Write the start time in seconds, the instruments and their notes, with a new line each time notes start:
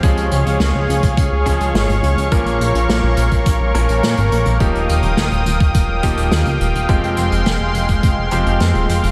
Already playing: analog synth pad F5
0.03 analog synth bass C#2, grand piano F3 G#3 C#4 G#4, analog synth pad G#4 C#5 C#6, kick, closed hi-hat
0.17 analog synth bass C#2, closed hi-hat
0.31 analog synth bass C#2, closed hi-hat
0.46 analog synth bass C#2, closed hi-hat
0.60 analog synth bass C#2, snare, closed hi-hat
0.74 analog synth bass C#2
0.89 analog synth bass C#2, closed hi-hat
1.03 analog synth bass C#2, kick, closed hi-hat
1.17 analog synth bass C#2, kick, closed hi-hat
1.32 analog synth bass C#2
1.46 analog synth bass C#2, grand piano F3 G#3 C#4 G#4, kick, closed hi-hat
1.60 analog synth bass C#2, closed hi-hat
1.74 analog synth bass G#1, snare, closed hi-hat
1.89 analog synth bass G#1, closed hi-hat
2.03 analog synth bass C#2, closed hi-hat
2.17 analog synth bass C#2, closed hi-hat
2.32 analog synth bass A#1, grand piano A#2 F3 A#3 C#4 A#4, analog synth pad A#4, kick, closed hi-hat
2.46 analog synth bass A#1, closed hi-hat
2.60 analog synth bass A#1, closed hi-hat
2.75 analog synth bass A#1, closed hi-hat
2.89 analog synth bass A#1, snare, closed hi-hat
3.03 analog synth bass A#1
3.17 analog synth bass A#1, closed hi-hat
3.31 analog synth bass A#1, kick, closed hi-hat
3.46 analog synth bass A#1, kick, closed hi-hat
3.60 analog synth bass A#1
3.74 analog synth bass A#1, grand piano A#2 F3 A#3 C#4 A#4, closed hi-hat
3.89 analog synth bass A#1, closed hi-hat
4.03 analog synth bass A#2, snare, closed hi-hat
4.17 analog synth bass G#1, closed hi-hat
4.32 analog synth bass A#1, closed hi-hat
4.46 analog synth bass A#1, closed hi-hat
4.60 analog synth bass D#1, grand piano F3 A#3 D#4 G4, analog synth pad F5 G5 D#6, kick, closed hi-hat
4.75 analog synth bass D#1, closed hi-hat
4.89 analog synth bass D#1, closed hi-hat
5.03 analog synth bass D#1, closed hi-hat
5.17 analog synth bass D#1, snare, closed hi-hat
5.31 analog synth bass D#1, closed hi-hat
5.46 analog synth bass D#1, closed hi-hat
5.60 analog synth bass D#1, kick, closed hi-hat
5.74 analog synth bass D#1, kick, closed hi-hat
5.89 analog synth bass D#1
6.03 analog synth bass D#1, grand piano F3 A#3 D#4 G4, kick, closed hi-hat
6.17 analog synth bass D#1, closed hi-hat
6.31 analog synth bass D#2, snare, closed hi-hat
6.45 analog synth bass C#2, closed hi-hat
6.60 analog synth bass D#1, closed hi-hat
6.74 analog synth bass D#1, closed hi-hat
6.89 analog synth bass F1, grand piano F3 G#3 C4 G4, analog synth pad G#3 C6, kick, closed hi-hat
7.03 analog synth bass F1, closed hi-hat
7.17 analog synth bass F1, closed hi-hat
7.32 analog synth bass F1, closed hi-hat
7.46 analog synth bass F1, snare, closed hi-hat
7.60 analog synth bass F1
7.74 analog synth bass F1, closed hi-hat
7.88 analog synth bass F1, kick, closed hi-hat
8.03 analog synth bass F1, kick, closed hi-hat
8.18 analog synth bass F1
8.31 analog synth bass F1, grand piano F3 G#3 C4 G4, closed hi-hat
8.46 analog synth bass F1, closed hi-hat
8.60 analog synth bass F2, snare, closed hi-hat
8.75 analog synth bass D#1, closed hi-hat
8.89 analog synth bass F1, closed hi-hat
9.03 analog synth bass F1, closed hi-hat